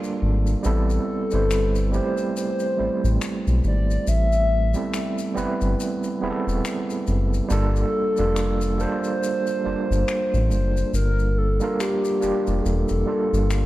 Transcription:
Already playing: G3 A#3 D4 F4 G#4 A4
0.04 maracas
0.22 G#1
0.47 maracas
0.63 A1 G3 B3 C4 E4 A4, maracas
0.90 maracas
1.31 G1 G3 C4 E4 B4, maracas
1.35 C5
1.51 finger snap, maracas
1.75 maracas
1.92 G3 A3 C4 E4 G4 C5, maracas
2.18 maracas
2.37 C5, maracas
2.60 maracas
2.77 A1 G3 A3 C4 E4 C5
3.04 A1, maracas
3.21 finger snap, maracas
3.47 B1, maracas
3.64 G#1 D5, maracas
3.91 maracas
4.07 A1 E5, maracas
4.32 maracas
4.74 G3 B3 C4 E4 A4, maracas
4.94 finger snap, maracas
5.19 maracas
5.34 G1 G3 B3 C4 E4 B4, maracas
5.61 G1, maracas
5.80 maracas
6.04 maracas
6.21 E1 G3 B3 C4 E4 G#4
6.30 A4
6.47 E1, maracas
6.65 finger snap, maracas
6.90 maracas
7.07 F#1, maracas
7.34 maracas
7.49 G1 G3 A#3 D4 F4 A4, maracas
7.53 A4
7.76 maracas
8.17 F1 G3 A#3 D4 F4, maracas
8.21 A4
8.36 finger snap, maracas
8.61 maracas
8.78 G3 A#3 D4 F4 A4 C5, maracas
9.04 maracas
9.23 maracas
9.47 maracas
9.64 G1 G3 A#3 D4 F4 C5
9.91 G1, maracas
10.08 C5, finger snap, maracas
10.34 A1, maracas
10.51 F#1 C5, maracas
10.77 maracas
10.93 G1 A#4, maracas
11.19 maracas
11.38 A4
11.60 G3 A#3 D4 F4 A#4, maracas
11.80 G4, finger snap, maracas
12.04 maracas
12.20 F1 G3 A#3 D4 F4 G4, maracas
12.47 F1, maracas
12.62 E1 G#4
12.66 A4, maracas
12.89 F1, maracas
13.06 G3 A#3 D4 F4 A4
13.33 G1, maracas
13.51 finger snap, maracas

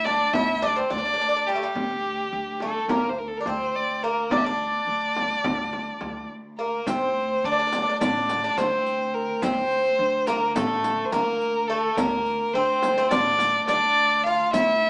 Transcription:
Already playing: D2
0.05 D4 D5, frame drum
0.33 D2 E4 E5, frame drum
0.62 D4 D5, frame drum
0.76 C4 C5
0.90 D2 D4 D5, frame drum
0.98 D4
1.05 D4
1.14 D4
1.21 D4
1.29 D4
1.37 D4
1.47 G3 G4
1.55 A3
1.63 G3
1.75 D2, frame drum
2.33 D2
2.60 A3 A4, frame drum
2.88 D2 A#3 A#4, frame drum
3.09 C5
3.19 A#4
3.28 A4
3.37 D4 A#4
3.46 D2 C4 C5, frame drum
3.75 D5
4.03 A#3 A#4
4.30 D2 D4 D5, frame drum
4.37 E5
4.45 D4 D5
4.87 D2
5.16 frame drum
5.44 D2, frame drum
5.73 frame drum
6.01 D2, frame drum
6.58 A#3 A#4
6.86 D2 C4 C5, riq, frame drum
7.44 D3 D4 D5
7.52 D4
7.59 D4
7.67 D4
7.73 D4, riq, frame drum
7.82 D4
7.90 D4
8.01 A1 D4 D5, riq, frame drum
8.29 riq, frame drum
8.44 D4
8.57 D3 C4 C5, riq, frame drum
8.87 riq
9.14 A#4
9.42 D2 C4 C5, riq, frame drum
9.71 riq
9.99 D3
10.27 A#3 A#4, riq, frame drum
10.55 A1 A3 A4, riq, frame drum
10.84 riq, frame drum
11.05 C5
11.11 D3 A#3 A#4, riq, frame drum
11.41 riq
11.67 A3 A4
11.95 D2 A#3 A#4, riq, frame drum
12.26 riq
12.53 D3 C4 C5
12.82 riq, frame drum
12.98 C4
13.10 A1 D4 D5, riq, frame drum
13.39 riq, frame drum
13.67 D3 D4 D5, riq, frame drum
13.97 riq
14.24 F4 F5
14.52 D2 E4 E5, riq, frame drum

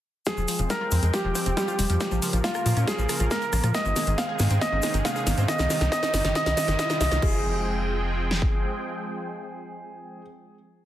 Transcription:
0.26 F3 G#3 C4 G#4 G5, kick, snare, closed hi-hat, riser, shaker
0.37 F1 F3, shaker
0.48 F3, open hi-hat, shaker
0.59 F1 F3, closed hi-hat, shaker
0.70 G3 A#4, kick, snare, closed hi-hat, shaker
0.81 F4
0.91 F2 F3, open hi-hat, shaker
1.02 F2 G#3, closed hi-hat, shaker
1.14 F3 G4, kick, snare, closed hi-hat, shaker
1.24 F1 F3
1.35 F3, kick, open hi-hat, shaker
1.46 F1 C4, closed hi-hat, shaker
1.57 G3 G4, kick, snare, closed hi-hat, shaker
1.68 F4, shaker
1.79 F1 G3, open hi-hat, shaker
1.90 F2 F3, closed hi-hat, shaker
2.00 C#3 F3 A#3 F4 A#4, kick, snare, closed hi-hat, shaker
2.11 A#1 F3, shaker
2.22 F3, open hi-hat, shaker
2.33 A#1 F3, closed hi-hat, shaker
2.44 A#3 F4, kick, snare, closed hi-hat, shaker
2.54 A#4, cross-stick, shaker
2.66 A#2 F3, open hi-hat, shaker
2.77 A#2 C#4, closed hi-hat, shaker
2.87 F3 G#4, kick, snare, closed hi-hat, shaker
2.98 A#1 F3, shaker
3.09 F3, cross-stick, open hi-hat, shaker
3.20 A#1 F4, closed hi-hat, shaker
3.31 A#3 A#4, kick, snare, closed hi-hat, shaker
3.41 A#4, shaker
3.53 A#1 A#3, cross-stick, open hi-hat, shaker
3.63 A#2 F3, cross-stick, closed hi-hat, shaker
3.74 C3 D#3 G#3 D#4 G#4 D#5, kick, snare, closed hi-hat, shaker
3.85 G#1 D#3, shaker
3.96 D#3, snare, open hi-hat, shaker
4.07 G#1 D#3, closed hi-hat, shaker
4.18 G#3 F5, kick, snare, closed hi-hat, shaker
4.29 G#4
4.39 G#2 D#3, snare, open hi-hat, shaker
4.50 G#2 C4, closed hi-hat, shaker
4.61 D#3 D#5, kick, snare, closed hi-hat, shaker
4.72 G#1 D#3
4.82 D#3, kick, snare, open hi-hat, shaker
4.94 G#1 D#3, closed hi-hat, shaker
5.05 G#3 F5, kick, snare, closed hi-hat, shaker
5.15 G#4, shaker
5.27 G#1 D#3, snare, open hi-hat, shaker
5.38 G#2 C4, closed hi-hat, shaker
5.48 D#3 G3 G4 D#5, kick, snare, closed hi-hat, shaker
5.58 C2 D#3, snare, shaker
5.70 D#3, snare, open hi-hat, shaker
5.81 C2 D#3, snare, closed hi-hat, shaker
5.92 D#3 D#5, kick, snare, closed hi-hat, shaker
6.03 D#3, snare, shaker
6.14 G1 D#3, snare, open hi-hat, shaker
6.24 G1 D#3, snare, closed hi-hat, shaker
6.35 D#3 D#5, kick, snare, closed hi-hat, shaker
6.46 C2 D#3, snare, shaker
6.57 D#3 D#5, snare, open hi-hat, shaker
6.68 G1 D#3, snare, closed hi-hat, shaker
6.79 D#3 D#5, kick, snare, closed hi-hat, shaker
6.90 D#3, snare, shaker
7.01 C2 D#3 D#5, snare, open hi-hat, shaker
7.11 C2 D#3, snare, closed hi-hat, shaker
7.22 F1 F3 G#3 C4 G#4 G5, kick, crash
8.31 snare
8.42 kick

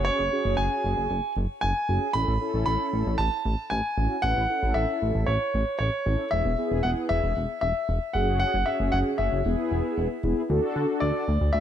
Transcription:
Already playing: F#1 C#4 F#4 G#4
0.05 C#5
0.19 F#1
0.32 C#4 F#4 G#4
0.45 F#1
0.57 F#1 G#5
0.84 F#1
0.97 F#1
1.11 F#1
1.37 F#1
1.61 F#1 G#5
1.89 F#1 C#4 F#4 G#4
2.13 A1 C#4 E4 A4 B5
2.28 A1
2.41 C#4 E4 A4
2.54 A1
2.66 A1 B5
2.93 A1
3.06 A1
3.18 A1 A5
3.45 A1
3.70 A1 G#5
3.98 A1 C#4 E4 F#4
4.22 A1 C#4 E4 B4 F#5
4.37 A1
4.50 C#4 E4 A4
4.63 A1
4.74 A1 E5
5.02 A1
5.15 A1
5.26 A1 C#5
5.54 A1
5.79 A1 C#5
6.06 A1 C#4 E4 A4
6.31 E1 B3 E4 G#4 E5
6.45 E1
6.58 B3 E4 G#4
6.71 E1
6.83 E1 F#5
7.09 E1 E5
7.24 E1
7.37 E1
7.61 E1 E5
7.89 E1
8.13 F#1 C#4 F#4 G#4 F#5
8.40 F#5
8.54 F#1
8.66 C#4 F#4 G#4 E5
8.80 F#1
8.92 F#1 F#5
9.18 F#1 E5
9.32 F#1
9.45 E1 B3 E4 G#4
9.71 E1
9.98 E1
10.24 E1 B3 E4 G#4
10.50 D2 D4 F#4 A4
10.76 D3
11.00 D2 D5
11.28 D2
11.41 D2
11.53 D2 E5

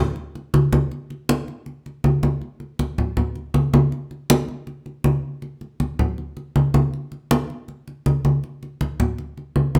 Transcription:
0.16 high conga
0.35 high conga
0.54 high conga
0.73 high conga
0.92 high conga
1.10 high conga
1.29 high conga
1.48 high conga
1.66 high conga
1.86 high conga
2.04 high conga
2.23 high conga
2.41 high conga
2.60 high conga
2.79 high conga
2.98 high conga, low conga
3.17 high conga, low conga
3.36 high conga
3.54 high conga
3.74 high conga
3.92 high conga
4.11 high conga
4.30 high conga
4.48 high conga
4.67 high conga
4.86 high conga
5.04 high conga
5.42 high conga
5.61 high conga
5.80 high conga
5.99 high conga, low conga
6.18 high conga
6.37 high conga
6.56 high conga
6.74 high conga
6.94 high conga
7.12 high conga
7.31 high conga
7.50 high conga
7.68 high conga
7.88 high conga
8.06 high conga
8.25 high conga
8.44 high conga
8.63 high conga
8.81 high conga
9.00 high conga, low conga
9.18 high conga
9.37 high conga
9.56 high conga
9.75 high conga

